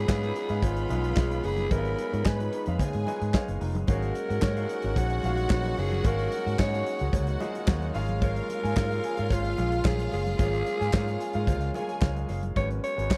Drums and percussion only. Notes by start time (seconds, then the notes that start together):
0.08 kick, snare, clap, cowbell, high conga
0.23 closed hi-hat
0.36 closed hi-hat
0.49 closed hi-hat
0.62 kick, closed hi-hat, cowbell
0.77 closed hi-hat
0.89 closed hi-hat, muted conga
1.04 closed hi-hat
1.16 kick, snare, clap, cowbell, high conga
1.31 closed hi-hat
1.43 open hi-hat
1.58 closed hi-hat, high conga
1.71 kick, closed hi-hat, cowbell, muted conga
1.85 closed hi-hat
1.99 closed hi-hat, muted conga
2.14 closed hi-hat
2.25 kick, snare, clap, cowbell, high conga
2.40 closed hi-hat
2.53 closed hi-hat
2.66 closed hi-hat
2.79 kick, closed hi-hat, cowbell, low conga
2.93 closed hi-hat
3.07 closed hi-hat, muted conga
3.21 closed hi-hat
3.34 kick, snare, clap, cowbell, high conga
3.48 closed hi-hat
3.61 open hi-hat
3.75 closed hi-hat, high conga
3.88 kick, closed hi-hat, cowbell, muted conga
4.02 closed hi-hat
4.15 closed hi-hat, muted conga
4.30 closed hi-hat
4.42 kick, snare, clap, cowbell, high conga
4.57 closed hi-hat
4.69 closed hi-hat
4.82 closed hi-hat
4.96 kick, closed hi-hat, cowbell
5.10 closed hi-hat
5.23 closed hi-hat, muted conga
5.37 closed hi-hat
5.50 kick, snare, clap, cowbell, high conga
5.64 closed hi-hat
5.77 open hi-hat
5.91 closed hi-hat, high conga
6.04 kick, closed hi-hat, cowbell, muted conga
6.18 closed hi-hat
6.32 closed hi-hat, muted conga
6.48 closed hi-hat
6.59 kick, snare, clap, cowbell, high conga
6.74 closed hi-hat
6.87 closed hi-hat
6.99 closed hi-hat
7.13 kick, closed hi-hat, cowbell, low conga
7.27 closed hi-hat
7.40 closed hi-hat, muted conga
7.55 closed hi-hat
7.67 kick, snare, clap, cowbell, high conga
7.82 closed hi-hat
7.94 snare, open hi-hat
8.09 closed hi-hat, high conga
8.22 kick, closed hi-hat, cowbell, muted conga
8.36 closed hi-hat
8.49 closed hi-hat, muted conga
8.65 closed hi-hat
8.76 kick, snare, clap, cowbell, high conga
8.92 closed hi-hat
9.04 closed hi-hat
9.17 closed hi-hat
9.30 kick, closed hi-hat, cowbell
9.44 closed hi-hat
9.57 closed hi-hat, muted conga
9.72 closed hi-hat
9.85 kick, snare, clap, cowbell, high conga
10.00 closed hi-hat
10.12 snare, open hi-hat
10.26 closed hi-hat, high conga
10.39 kick, closed hi-hat, cowbell, muted conga
10.54 closed hi-hat
10.66 closed hi-hat, muted conga
10.82 closed hi-hat
10.93 kick, snare, clap, cowbell, high conga
11.08 closed hi-hat
11.20 closed hi-hat
11.33 closed hi-hat
11.47 kick, closed hi-hat, cowbell, low conga
11.61 closed hi-hat
11.74 closed hi-hat, muted conga
11.89 closed hi-hat
12.01 kick, snare, clap, cowbell, high conga
12.16 closed hi-hat
12.29 snare, open hi-hat
12.43 closed hi-hat, high conga
12.56 kick, closed hi-hat, cowbell, muted conga
12.71 closed hi-hat
12.84 closed hi-hat
12.99 closed hi-hat
13.11 kick, snare, clap, cowbell, high conga